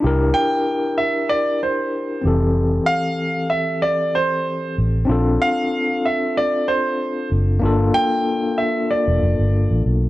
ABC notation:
X:1
M:4/4
L:1/16
Q:"Swing 16ths" 1/4=95
K:F
V:1 name="Grand piano"
z2 g4 e2 d2 c4 z2 | z2 f4 e2 d2 c4 z2 | z2 f4 e2 d2 c4 z2 | z2 g4 e2 d6 z2 |]
V:2 name="Tine electric piano"
[DEGB]12- [DEGB]2 [E,CGA]2- | [E,CGA]12- [E,CGA]2 z2 | [CDFA]16 | [B,DFA]16 |]
V:3 name="Fingered electric bass" clef=bass
C,,2 z12 F,,,2- | F,,,2 z12 A,,,2 | B,,,2 z12 _G,,,2 | G,,,2 z6 z E,,, F,,, G,,,2 A,,, =B,,,2 |]